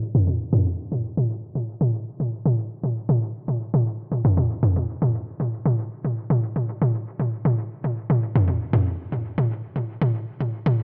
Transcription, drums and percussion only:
0.15 mid tom
0.27 high tom
0.53 mid tom, high tom
0.92 high tom
1.17 high tom
1.55 high tom
1.81 high tom
2.20 high tom
2.46 high tom
2.84 high tom
3.09 high tom
3.48 high tom
3.74 high tom
4.12 high tom
4.25 mid tom
4.37 high tom
4.63 mid tom
4.76 high tom
5.02 high tom
5.40 high tom
5.66 high tom
6.05 high tom
6.30 high tom
6.56 high tom
6.82 high tom
7.20 high tom
7.45 high tom
7.84 high tom
8.10 high tom
8.36 mid tom
8.48 high tom
8.73 mid tom, high tom
9.12 high tom
9.38 high tom
9.76 high tom
10.02 high tom
10.41 high tom
10.66 high tom

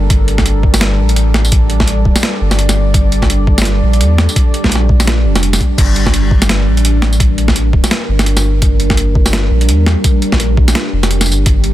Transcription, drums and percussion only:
0.10 kick, closed hi-hat
0.28 closed hi-hat
0.38 kick, snare
0.46 closed hi-hat
0.63 kick
0.74 snare, tambourine
0.81 snare, closed hi-hat
1.09 closed hi-hat
1.16 closed hi-hat
1.34 snare
1.45 tambourine
1.52 kick, closed hi-hat
1.70 closed hi-hat
1.80 kick, snare
1.88 closed hi-hat
2.05 kick
2.16 snare, tambourine
2.23 snare, closed hi-hat
2.51 snare, closed hi-hat, tambourine
2.59 closed hi-hat
2.69 snare, tambourine
2.94 kick, closed hi-hat
3.12 closed hi-hat
3.22 kick, snare
3.30 closed hi-hat
3.47 kick
3.58 snare, tambourine
3.62 snare, closed hi-hat
3.93 closed hi-hat
4.01 closed hi-hat
4.18 snare
4.29 tambourine
4.36 kick, closed hi-hat
4.54 closed hi-hat
4.64 kick, snare
4.69 snare, closed hi-hat
4.75 snare
4.89 kick
5.00 snare, tambourine
5.07 snare, closed hi-hat
5.36 snare, closed hi-hat, tambourine
5.43 closed hi-hat
5.53 snare, tambourine
5.60 kick, closed hi-hat
5.78 kick, closed hi-hat, crash
5.96 closed hi-hat
6.06 kick, snare
6.14 closed hi-hat
6.31 kick
6.42 snare, tambourine
6.49 snare, closed hi-hat
6.77 closed hi-hat
6.85 closed hi-hat
7.02 snare
7.13 tambourine
7.20 kick, closed hi-hat
7.38 closed hi-hat
7.48 kick, snare
7.56 closed hi-hat
7.73 kick
7.84 snare, tambourine
7.91 snare, closed hi-hat
8.19 snare, closed hi-hat, tambourine
8.26 closed hi-hat
8.37 snare, tambourine
8.62 kick, closed hi-hat
8.80 closed hi-hat
8.90 kick, snare
8.97 closed hi-hat
9.15 kick
9.26 snare, tambourine
9.33 snare, closed hi-hat
9.61 closed hi-hat
9.69 closed hi-hat
9.86 snare
10.04 kick, closed hi-hat, tambourine
10.22 closed hi-hat
10.32 kick, snare
10.40 closed hi-hat
10.57 kick
10.68 snare, tambourine
10.75 snare, closed hi-hat
11.03 snare, closed hi-hat, tambourine
11.11 closed hi-hat
11.21 snare, tambourine
11.26 tambourine
11.32 tambourine
11.46 kick, closed hi-hat
11.64 closed hi-hat

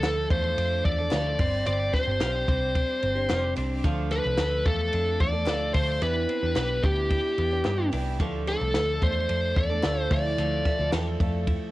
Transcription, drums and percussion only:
0.03 snare, clap, ride
0.30 kick, ride
0.58 ride
0.85 kick, ride
1.11 snare, clap, ride
1.39 kick, open hi-hat, ride
1.66 hi-hat pedal, ride
1.93 kick, snare, ride
2.21 snare, clap, ride
2.48 kick, ride
2.75 kick, ride
3.02 ride
3.29 snare, clap, ride
3.56 open hi-hat, ride
3.84 kick, hi-hat pedal, ride
4.11 snare, ride
4.38 snare, clap, ride
4.66 kick, ride
4.93 ride
5.20 kick, ride
5.46 snare, clap, ride
5.74 kick, open hi-hat, ride
6.02 hi-hat pedal, ride
6.29 ride
6.56 snare, clap, ride
6.84 kick, ride
7.10 kick, ride
7.38 ride
7.65 snare, clap, ride
7.93 open hi-hat, ride
8.20 kick, hi-hat pedal, ride
8.47 snare, ride
8.74 snare, clap, ride
9.02 kick, ride
9.29 ride
9.56 kick, ride
9.83 snare, clap, ride
10.11 kick, open hi-hat, ride
10.38 hi-hat pedal, ride
10.65 kick, snare, ride
10.92 snare, clap, ride
11.20 kick, ride
11.47 kick, ride

